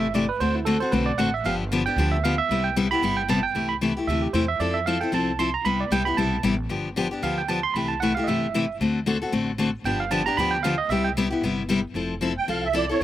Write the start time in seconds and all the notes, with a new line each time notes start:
Already playing: G1 E5
0.14 C3 E3 A3 E4 G4 D5
0.29 B4
0.40 D2 D3 A3 C4 F#4 A4 C5
0.55 E4
0.65 D3 A3 C4 F#4 A4
0.80 C4 F#4 A4 C5
0.91 B1 D3 A3 C4 F#4 A4 B4
1.06 D5
1.18 A1 D3 A3 C4 F#4 A4 F#5
1.34 E5
1.44 G1 D3 F3 B3 D4 G4 F5
1.72 D3 F3 B3 D4 G4
1.86 B3 D4 G4 G5
1.96 D2 D3 F3 B3 D4 G4
2.12 E5
2.24 D3 F3 B3 D4 G4 F5
2.38 E5
2.49 C2 C3 G3 B3 E4 G4
2.64 G5
2.76 C3 G3 B3 E4 G4
2.91 B3 E4 G4 B5
3.02 G1 C3 G3 B3 E4 G4
3.17 G5
3.28 C3 G3 B3 E4 G4 A5
3.43 G5
3.54 C2 C3 E3 A3 E4 G4
3.69 B5
3.81 C3 E3 A3 E4 G4
3.97 A3 E4 G4
4.07 D2 C3 E3 A3 E4 G4 E5
4.22 G4
4.33 E2 C3 E3 A3 E4 G4 C5
4.48 E5
4.60 F2 F3 C4 E4 A4 D5
4.74 E5
4.86 F3 C4 E4 A4 F5
5.01 C4 E4 A4 G5
5.12 C2 F3 C4 E4 A4 A5
5.39 F3 C4 E4 A4 C6
5.54 A#5
5.64 C2 C3 G3 B3 E4 G4 B5
5.81 D5
5.91 C2 C3 G3 B3 E4 G4 G5
6.05 B3 E4 G4 B5
6.17 B1 C3 G3 B3 E4 G4 A5
6.43 A1 C3 G3 B3 E4 G4
6.69 G1 D3 F3 B3 D4 G4
6.96 D3 F3 B3 D4 G4
7.11 B3 D4 G4
7.23 D2 D3 F3 B3 D4 G4 F5
7.38 G5
7.48 D3 F3 B3 D4 G4 A5
7.63 C6
7.74 C2 C3 E3 A3 E4 G4 B5
7.88 A5
8.00 C3 E3 A3 E4 G4 F#5
8.15 E4 G4 F5
8.19 A3
8.24 G1 C3 D#5 E5
8.28 E3 A3 E4 G4
8.54 C3 E3 A3 E4 G4
8.80 D2 D3 A3 C4 F#4 A4
9.06 D3 A3 C4 F#4 A4
9.22 C4 F#4 A4
9.32 A1 D3 A3 C4 F#4 A4
9.58 D3 A3 C4 F#4 A4
9.84 G1 D3 F3 B3 D4 G4 G5
10.00 F5
10.11 D3 F3 B3 D4 G4 A5
10.26 B3 D4 G4 A#5
10.37 D2 D3 F3 B3 D4 G4 B5
10.51 G5
10.63 D3 F3 B3 D4 G4 F5
10.78 D#5
10.89 C2 C3 G3 B3 E4 G4 E5
11.04 G5
11.17 C3 G3 B3 E4 G4
11.30 B3 E4 G4
11.41 G1 C3 G3 B3 E4 G4
11.69 C3 G3 B3 E4 G4
11.94 F1 F3 C4 E4 A4
12.21 F3 C4 E4 A4
12.38 G5
12.48 C2 F3 C4 E4 A4 F5
12.65 E5
12.73 F3 C4 E4 A4 D5
12.89 C4 E4 A4 C#5
13.01 D2